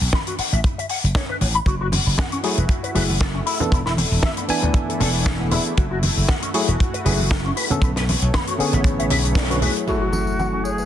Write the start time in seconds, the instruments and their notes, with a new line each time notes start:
0.01 slap bass B1
0.13 clean electric guitar B5, kick, snare, high conga
0.27 clean electric guitar F#4, closed hi-hat
0.38 clean electric guitar F#5, muted slap bass stroke, open hi-hat
0.52 slap bass A1, clean electric guitar E5, closed hi-hat
0.64 kick, closed hi-hat
0.78 clean electric guitar E5, closed hi-hat
0.89 clean electric guitar F#5, open hi-hat
1.04 slap bass F#1, closed hi-hat
1.15 clean electric guitar C#5, kick, snare, closed hi-hat
1.29 clean electric guitar B4
1.41 slap bass A1, clean electric guitar C#5, open hi-hat, high conga
1.55 clean electric guitar B5, closed hi-hat
1.66 slap bass F#1, analog synth pad A3 E4 F#4, clean electric guitar F#4, kick, closed hi-hat
1.81 clean electric guitar F#4
1.92 open hi-hat, high conga
2.06 slap bass F#1
2.18 clean electric guitar F#5, kick, snare, closed hi-hat, high conga
2.32 clean electric guitar C#4, closed hi-hat
2.43 tine electric piano F#3 A3 E4 G#4, clean electric guitar C#5, open hi-hat
2.57 slap bass E1, clean electric guitar B4, closed hi-hat
2.69 kick, closed hi-hat
2.83 clean electric guitar B4, closed hi-hat
2.95 slap bass F#1, tine electric piano F#3 A3 E4 G#4, clean electric guitar B4, open hi-hat, low conga
3.10 high conga
3.20 clean electric guitar A4, kick, snare, closed hi-hat
3.34 clean electric guitar C#4
3.46 analog synth pad D4 E4, clean electric guitar E4, open hi-hat
3.60 tine electric piano E3 B3 D4 A4, closed hi-hat, low conga
3.72 slap bass E1, clean electric guitar E4, kick, closed hi-hat
3.86 clean electric guitar E4, snare
3.97 open hi-hat, high conga
4.11 slap bass E1
4.23 clean electric guitar E5, kick, snare, high conga
4.37 clean electric guitar B3, closed hi-hat
4.48 tine electric piano E3 B3 D4 G#5, clean electric guitar B4, muted slap bass stroke, open hi-hat
4.62 slap bass D2, clean electric guitar A4, closed hi-hat, low conga
4.74 kick, closed hi-hat
4.89 clean electric guitar A4, closed hi-hat
5.00 slap bass E1, clean electric guitar A4, open hi-hat, low conga
5.26 clean electric guitar G#4, kick, snare
5.40 clean electric guitar B3
5.51 tine electric piano E3 B3 D4 G#4, clean electric guitar E4, open hi-hat, high conga, low conga
5.65 closed hi-hat
5.77 slap bass F#1, analog synth pad F#4, clean electric guitar F#4, kick, closed hi-hat
5.91 clean electric guitar F#4
6.03 open hi-hat, high conga
6.17 slap bass F#1
6.28 clean electric guitar F#5, kick, snare, high conga
6.42 clean electric guitar C#4, closed hi-hat
6.54 tine electric piano F#3 A3 E4 G#4, clean electric guitar C#5, open hi-hat
6.68 slap bass E1, clean electric guitar B4, closed hi-hat
6.80 kick, closed hi-hat
6.93 clean electric guitar B4, closed hi-hat
7.05 slap bass F#1, tine electric piano F#3 A3 E4 G#4, clean electric guitar B4, open hi-hat, low conga
7.20 high conga
7.31 clean electric guitar A4, kick, snare
7.45 clean electric guitar C#4
7.56 analog synth pad A3 B3 C#5, clean electric guitar B4, open hi-hat
7.70 tine electric piano D3 B3 C#4 A4, closed hi-hat, low conga
7.82 slap bass B1, clean electric guitar B4, kick, closed hi-hat
7.96 clean electric guitar B4, snare, closed hi-hat
8.09 open hi-hat, high conga
8.22 slap bass B1, closed hi-hat
8.34 clean electric guitar B5, kick, snare, closed hi-hat, high conga
8.47 clean electric guitar F#4, closed hi-hat
8.58 tine electric piano D3 B3 C#4 G#4, clean electric guitar F#5, muted slap bass stroke, open hi-hat
8.73 slap bass A1, clean electric guitar E5, closed hi-hat, low conga
8.84 kick, closed hi-hat
8.99 clean electric guitar E5, closed hi-hat
9.10 slap bass B1, clean electric guitar E5, open hi-hat, low conga
9.25 closed hi-hat
9.35 clean electric guitar D5, kick, snare, closed hi-hat
9.50 tine electric piano D3 B3 C#4 B4, clean electric guitar F#4, closed hi-hat
9.61 tine electric piano F#3 A3 E4 G#4, clean electric guitar B4, open hi-hat, high conga, low conga
9.76 closed hi-hat
9.86 tine electric piano F#3 A3 E4 A4, analog synth pad F#3 A3 E4 G#5, flute F#4, clean electric guitar F#4, tambourine, impact
10.01 clean electric guitar F#4
10.12 tambourine, high conga
10.27 tambourine
10.39 clean electric guitar F#5, tambourine, high conga
10.53 clean electric guitar C#4
10.64 flute G#4, clean electric guitar C#5, tambourine
10.78 clean electric guitar B4, tambourine